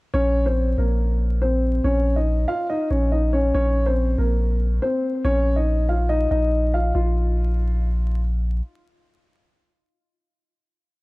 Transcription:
0.14 0.75 A#1 loud
0.14 0.44 C#4 medium
0.14 0.44 C#5 loud
0.46 0.76 C4 medium
0.46 0.76 C5 medium
0.78 1.80 A#1 loud
0.78 1.38 A#3 medium
0.78 1.38 A#4 medium
1.42 1.82 C4 medium
1.42 1.82 C5 medium
1.84 2.46 A#1 loud
1.84 2.15 C#4 medium
1.84 2.14 C#5 medium
2.16 2.47 D#4 medium
2.16 2.46 D#5 medium
2.48 2.67 F4 medium
2.48 2.66 F5 medium
2.70 2.88 D#4 medium
2.70 2.88 D#5 medium
2.90 3.52 A#1 loud
2.90 3.09 C#4 medium
2.90 3.09 C#5 medium
3.12 3.31 D#4 medium
3.12 3.30 D#5 medium
3.33 3.52 C#4 medium
3.33 3.51 C#5 medium
3.54 4.16 A#1 loud
3.54 3.85 C#4 medium
3.54 3.84 C#5 loud
3.86 4.17 C4 medium
3.86 4.16 C5 medium
4.18 4.80 A#1 loud
4.18 4.79 A#3 medium
4.18 4.78 A#4 medium
4.82 5.23 C4 medium
4.82 5.22 C5 medium
5.25 6.27 A#1 loud
5.25 5.55 C#4 medium
5.25 5.55 C#5 loud
5.56 5.87 D#4 medium
5.56 5.86 D#5 medium
5.89 6.07 F4 medium
5.89 6.07 F5 medium
6.09 6.28 D#4 medium
6.09 6.28 D#5 medium
6.31 6.92 A#1 loud
6.31 6.71 D#4 medium
6.31 6.71 D#5 medium
6.74 6.92 F4 medium
6.74 6.92 F5 medium
6.95 8.61 A#1 loud
6.95 8.19 F4 medium

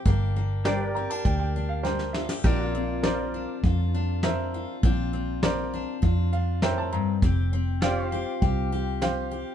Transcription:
0.05 1.06 G1 medium
0.05 0.59 G2 medium
0.05 0.36 A#3 medium
0.05 0.96 D4 medium
0.05 1.25 G4 medium
0.05 kick loud
0.05 open hi-hat medium
0.36 2.44 A#3 medium
0.65 1.19 G3 medium
0.65 1.16 G4 medium
0.65 2.43 G4 medium
0.65 1.16 A#4 medium
0.65 0.92 C5 medium
0.65 1.17 D5 medium
0.65 2.44 D5 medium
0.65 snare loud
0.65 open hi-hat medium
0.92 2.44 A#4 medium
0.92 1.09 A#5 medium
0.96 1.10 C4 medium
1.10 1.55 D4 medium
1.10 1.24 A5 medium
1.25 2.26 D2 medium
1.25 1.79 D3 medium
1.25 2.14 G4 medium
1.25 1.38 G5 medium
1.25 kick loud
1.25 open hi-hat medium
1.40 1.68 G5 medium
1.56 2.45 D4 medium
1.69 1.83 F5 medium
1.83 2.38 G3 medium
1.83 2.35 G4 medium
1.83 2.35 A#4 medium
1.83 2.35 C5 medium
1.83 2.12 G5 medium
1.83 snare medium
1.99 snare medium
2.13 2.29 F4 medium
2.13 2.42 E5 medium
2.13 snare medium
2.29 2.44 G4 soft
2.29 snare loud
2.44 3.45 A#1 medium
2.44 2.98 A#2 medium
2.44 2.74 C4 medium
2.44 3.34 D4 medium
2.44 3.64 F4 medium
2.44 2.69 G4 medium
2.44 7.19 A#4 medium
2.44 7.20 D5 medium
2.44 kick loud
2.44 crash medium
2.69 7.19 F4 medium
2.75 4.83 C4 medium
3.03 3.58 F3 medium
3.03 3.55 A#4 medium
3.03 3.55 C5 medium
3.03 3.55 D5 medium
3.03 snare loud
3.34 3.93 D4 medium
3.63 4.64 F2 medium
3.63 4.18 F2 medium
3.63 4.54 F4 medium
3.63 kick loud
3.63 open hi-hat soft
3.94 4.80 D4 medium
4.23 4.78 F3 medium
4.23 4.75 A#4 medium
4.23 4.75 C5 medium
4.23 4.75 E5 medium
4.23 snare loud
4.54 4.85 F4 medium
4.83 5.84 A#1 medium
4.83 5.37 A#2 medium
4.83 5.13 C4 medium
4.83 5.72 D4 medium
4.83 6.03 F4 medium
4.83 kick loud
4.83 open hi-hat medium
5.13 7.23 C4 medium
5.43 5.97 F3 medium
5.43 5.94 A#4 medium
5.43 5.94 C5 medium
5.43 5.94 D5 medium
5.43 snare loud
5.74 6.32 D4 medium
6.02 6.56 F2 medium
6.02 7.04 F2 medium
6.02 7.24 F4 medium
6.02 kick loud
6.02 open hi-hat medium
6.33 7.19 D4 medium
6.33 6.61 F5 medium
6.62 6.92 A2 medium
6.62 7.14 A#4 medium
6.62 7.14 C5 medium
6.62 7.14 E5 medium
6.62 6.77 G5 medium
6.62 snare loud
6.78 6.92 A5 medium
6.93 7.22 G2 medium
6.93 7.20 A#5 medium
7.22 8.23 F1 medium
7.22 7.76 F2 medium
7.22 7.53 C4 medium
7.22 8.11 G4 medium
7.22 kick loud
7.22 open hi-hat medium
7.53 9.55 C4 medium
7.82 8.36 F3 medium
7.82 9.55 F4 medium
7.82 8.33 G4 medium
7.82 9.55 G4 medium
7.82 8.34 C5 medium
7.82 8.09 D5 medium
7.82 8.34 F5 loud
7.82 snare loud
8.09 8.41 G4 medium
8.09 9.55 C5 medium
8.41 9.43 C2 medium
8.41 8.96 C3 medium
8.41 8.71 G4 medium
8.41 kick loud
8.41 open hi-hat soft
8.72 9.30 G4 medium
9.01 9.55 F3 medium
9.01 9.53 G4 medium
9.01 9.53 C5 medium
9.01 9.53 F5 medium
9.01 snare loud
9.01 open hi-hat soft
9.31 9.55 G4 medium

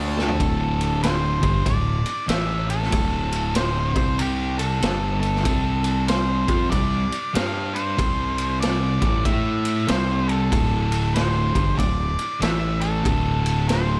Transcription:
0.00 0.36 D2 medium
0.00 0.38 D3 medium
0.00 0.39 A3 loud
0.00 0.39 D4 loud
0.18 1.03 A4 medium
0.18 snare medium
0.29 floor tom medium
0.40 1.39 D1 medium
0.40 1.41 D2 loud
0.40 1.41 A2 loud
0.40 1.40 D3 loud
0.40 kick loud
0.40 ride medium
0.81 ride medium
1.03 1.68 C5 medium
1.03 snare loud
1.03 ride medium
1.41 1.65 G1 medium
1.41 1.64 G2 loud
1.41 1.64 D3 medium
1.41 1.65 G3 medium
1.41 kick loud
1.41 ride medium
1.64 2.03 D1 medium
1.64 1.97 D2 medium
1.64 1.97 A2 medium
1.64 2.25 D5 medium
1.64 kick loud
1.64 ride medium
2.06 ride medium
2.27 2.88 A1 medium
2.27 2.90 A2 loud
2.27 2.91 E3 loud
2.27 2.91 A3 loud
2.27 2.66 E5 medium
2.27 snare loud
2.27 ride medium
2.70 3.56 A4 medium
2.70 ride medium
2.82 snare soft
2.91 3.92 D1 loud
2.91 3.93 D2 medium
2.91 3.93 A2 loud
2.91 3.94 D3 medium
2.91 kick loud
2.91 ride loud
3.32 ride medium
3.55 3.96 C5 medium
3.55 snare loud
3.55 ride medium
3.94 4.78 C2 medium
3.94 4.80 C3 loud
3.94 4.81 G3 loud
3.94 4.81 C4 loud
3.94 4.20 C5 medium
3.94 kick loud
3.94 ride medium
4.19 4.56 G4 medium
4.19 ride loud
4.58 5.19 A4 medium
4.58 ride medium
4.81 5.41 G1 medium
4.81 5.44 G2 loud
4.81 5.44 D3 loud
4.81 5.44 G3 medium
4.81 snare loud
4.81 ride medium
5.20 6.08 A4 loud
5.20 ride medium
5.35 snare soft
5.44 6.44 C2 loud
5.44 6.46 C3 medium
5.44 6.47 G3 medium
5.44 6.46 C4 loud
5.44 kick loud
5.44 ride medium
5.84 ride medium
6.08 6.70 C5 medium
6.08 snare loud
6.08 ride medium
6.47 6.70 F2 medium
6.47 6.70 F3 medium
6.47 6.70 C4 loud
6.47 6.71 F4 loud
6.47 kick loud
6.47 ride medium
6.70 7.09 C2 medium
6.70 7.02 C3 medium
6.70 7.03 G3 medium
6.70 7.36 D5 medium
6.70 kick medium
6.70 ride medium
7.12 ride medium
7.34 7.94 G2 medium
7.34 7.96 G3 medium
7.34 7.97 D4 medium
7.34 7.98 G4 loud
7.34 7.76 F5 loud
7.34 snare loud
7.34 ride medium
7.75 8.60 C5 loud
7.75 ride medium
7.97 8.97 C2 medium
7.97 8.99 C3 medium
7.97 9.00 G3 medium
7.97 9.00 C4 loud
7.97 kick loud
7.97 ride loud
8.38 ride medium
8.60 9.26 D5 medium
8.60 snare loud
8.60 ride medium
9.01 9.23 A1 medium
9.01 9.24 A2 medium
9.01 9.24 E3 loud
9.01 9.24 A3 loud
9.01 kick loud
9.01 ride medium
9.25 9.84 A2 medium
9.25 9.87 A3 medium
9.25 9.88 E4 medium
9.25 9.88 A4 loud
9.25 9.90 E5 medium
9.25 kick loud
9.25 ride medium
9.65 ride medium
9.88 10.48 C2 medium
9.88 10.50 C3 medium
9.88 10.50 G3 medium
9.88 10.51 C4 loud
9.88 10.29 C5 loud
9.88 snare loud
9.88 ride medium
10.28 11.17 A4 loud
10.28 ride medium
10.51 11.51 D1 medium
10.51 11.53 D2 medium
10.51 11.53 A2 medium
10.51 11.53 D3 medium
10.51 kick loud
10.51 ride loud
10.92 ride medium
11.14 11.78 C5 loud
11.14 snare medium
11.14 ride medium
11.53 11.77 G1 medium
11.53 11.76 G2 loud
11.53 11.77 D3 loud
11.53 11.77 G3 loud
11.53 kick loud
11.53 ride medium
11.77 12.15 D1 medium
11.77 12.09 D2 medium
11.77 12.10 A2 medium
11.77 12.42 D5 loud
11.77 kick medium
11.77 ride medium
12.19 ride medium
12.40 13.01 A1 medium
12.40 13.03 A2 loud
12.40 13.04 E3 loud
12.40 13.04 A3 loud
12.40 12.83 E5 loud
12.40 snare loud
12.40 ride medium
12.81 13.68 A4 loud
12.81 ride medium
13.04 14.00 D1 medium
13.04 14.00 D2 medium
13.04 14.00 A2 loud
13.04 14.00 D3 medium
13.04 kick loud
13.04 ride medium
13.46 ride medium
13.69 14.00 C5 loud
13.69 snare loud
13.69 ride medium

